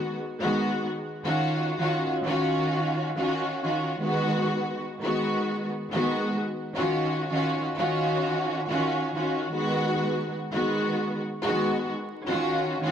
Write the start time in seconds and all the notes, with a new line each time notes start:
Already playing: D#3 G#3 B3 F#4
0.40 D#3 G#3 B3 F#4
1.23 D#3 C#4 F4 F#4
1.78 D#3 C#4 F4 F#4
2.25 D#3 C#4 F4 F#4
3.16 D#3 C#4 F4 F#4
3.63 D#3 C#4 F4 F#4
3.99 D#3 G#3 B3 F#4
5.01 D#3 G#3 B3 F#4
5.92 D#3 G#3 B3 F#4
6.75 D#3 C#4 F4 F#4
7.30 D#3 C#4 F4 F#4
7.77 D#3 C#4 F4 F#4
8.68 D#3 C#4 F4 F#4
9.14 D#3 C#4 F4 F#4
9.51 D#3 G#3 B3 F#4
10.53 D#3 G#3 B3 F#4
11.44 D#3 G#3 B3 F#4
12.27 D#3 C#4 F4 F#4
12.81 D#3 C#4 F4 F#4